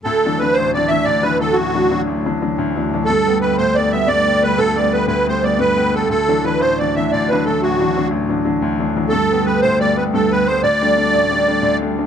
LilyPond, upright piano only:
\new Staff \with { instrumentName = "Upright piano" } { \clef bass \time 9/8 \key d \major \tempo 4. = 119 d,8 <e fis d'>8 <e fis d'>8 a,,8 <e fis d'>8 <e fis d'>8 d,8 <e fis d'>8 <e fis d'>8 | a,,8 <e fis d'>8 <e fis d'>8 a,,8 <e fis d'>8 <e fis d'>8 d,8 <e fis d'>8 <e fis d'>8 | g,8 <g a b>8 <g a b>8 d,8 <g a b>8 <g a b>8 g,8 <g a b>8 <g a b>8 | d,8 <g a b>8 <g a b>8 d,8 <g a b>8 <g a b>8 g,8 <g a b>8 <g a b>8 |
d,8 <e fis d'>8 <e fis d'>8 a,,8 <e fis d'>8 <e fis d'>8 d,8 <e fis d'>8 <e fis d'>8 | a,,8 <e fis d'>8 <e fis d'>8 a,,8 <e fis d'>8 <e fis d'>8 d,8 <e fis d'>8 <e fis d'>8 | g,8 <g a b>8 <g a b>8 d,8 <g a b>8 <g a b>8 g,8 <g a b>8 <g a b>8 | d,8 <g a d'>8 <g a d'>8 a,,8 <g a d'>8 <g a d'>8 d,8 <g a d'>8 <g a d'>8 | }